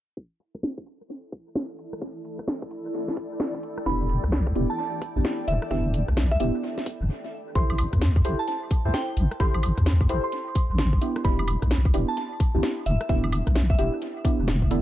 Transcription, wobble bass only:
0, 0, Header, 1, 2, 480
1, 0, Start_track
1, 0, Key_signature, 0, "minor"
1, 0, Tempo, 461538
1, 177, Time_signature, 4, 2, 24, 8
1, 15411, End_track
2, 0, Start_track
2, 0, Title_t, "Wobble bass"
2, 0, Program_c, 0, 39
2, 4017, Note_on_c, 0, 28, 103
2, 4350, Note_off_c, 0, 28, 0
2, 4407, Note_on_c, 0, 35, 85
2, 4702, Note_off_c, 0, 35, 0
2, 4738, Note_on_c, 0, 28, 95
2, 4852, Note_off_c, 0, 28, 0
2, 5368, Note_on_c, 0, 33, 87
2, 5436, Note_off_c, 0, 33, 0
2, 5698, Note_on_c, 0, 28, 99
2, 5812, Note_off_c, 0, 28, 0
2, 5937, Note_on_c, 0, 28, 102
2, 6270, Note_off_c, 0, 28, 0
2, 6328, Note_on_c, 0, 35, 82
2, 6623, Note_off_c, 0, 35, 0
2, 6657, Note_on_c, 0, 28, 100
2, 6772, Note_off_c, 0, 28, 0
2, 7288, Note_on_c, 0, 28, 81
2, 7377, Note_off_c, 0, 28, 0
2, 7857, Note_on_c, 0, 33, 102
2, 8190, Note_off_c, 0, 33, 0
2, 8247, Note_on_c, 0, 40, 80
2, 8542, Note_off_c, 0, 40, 0
2, 8579, Note_on_c, 0, 33, 100
2, 8693, Note_off_c, 0, 33, 0
2, 9208, Note_on_c, 0, 38, 88
2, 9276, Note_off_c, 0, 38, 0
2, 9537, Note_on_c, 0, 33, 102
2, 9652, Note_off_c, 0, 33, 0
2, 9776, Note_on_c, 0, 33, 104
2, 10110, Note_off_c, 0, 33, 0
2, 10167, Note_on_c, 0, 40, 87
2, 10462, Note_off_c, 0, 40, 0
2, 10497, Note_on_c, 0, 33, 98
2, 10612, Note_off_c, 0, 33, 0
2, 11127, Note_on_c, 0, 33, 82
2, 11422, Note_off_c, 0, 33, 0
2, 11696, Note_on_c, 0, 28, 101
2, 12029, Note_off_c, 0, 28, 0
2, 12088, Note_on_c, 0, 35, 84
2, 12383, Note_off_c, 0, 35, 0
2, 12415, Note_on_c, 0, 28, 99
2, 12531, Note_off_c, 0, 28, 0
2, 13048, Note_on_c, 0, 33, 92
2, 13116, Note_off_c, 0, 33, 0
2, 13378, Note_on_c, 0, 28, 99
2, 13492, Note_off_c, 0, 28, 0
2, 13617, Note_on_c, 0, 28, 104
2, 13950, Note_off_c, 0, 28, 0
2, 14007, Note_on_c, 0, 35, 81
2, 14302, Note_off_c, 0, 35, 0
2, 14339, Note_on_c, 0, 28, 99
2, 14453, Note_off_c, 0, 28, 0
2, 14969, Note_on_c, 0, 28, 83
2, 15292, Note_off_c, 0, 28, 0
2, 15299, Note_on_c, 0, 28, 83
2, 15411, Note_off_c, 0, 28, 0
2, 15411, End_track
0, 0, End_of_file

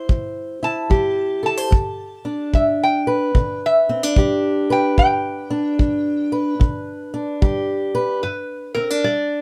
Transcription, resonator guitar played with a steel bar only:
0, 0, Header, 1, 2, 480
1, 0, Start_track
1, 0, Key_signature, 1, "major"
1, 0, Tempo, 815217
1, 1012, Time_signature, 4, 2, 24, 8
1, 5544, End_track
2, 0, Start_track
2, 0, Title_t, "Resonator guitar played with a steel bar"
2, 0, Program_c, 0, 25
2, 378, Note_on_c, 0, 81, 99
2, 840, Note_off_c, 0, 81, 0
2, 859, Note_on_c, 0, 81, 87
2, 1476, Note_off_c, 0, 81, 0
2, 1500, Note_on_c, 0, 76, 75
2, 1651, Note_off_c, 0, 76, 0
2, 1669, Note_on_c, 0, 79, 93
2, 2126, Note_off_c, 0, 79, 0
2, 2155, Note_on_c, 0, 76, 89
2, 2764, Note_off_c, 0, 76, 0
2, 2782, Note_on_c, 0, 79, 88
2, 2932, Note_off_c, 0, 79, 0
2, 2938, Note_on_c, 0, 79, 97
2, 3871, Note_off_c, 0, 79, 0
2, 4845, Note_on_c, 0, 71, 79
2, 5147, Note_off_c, 0, 71, 0
2, 5149, Note_on_c, 0, 70, 86
2, 5325, Note_on_c, 0, 74, 89
2, 5332, Note_off_c, 0, 70, 0
2, 5544, Note_off_c, 0, 74, 0
2, 5544, End_track
0, 0, End_of_file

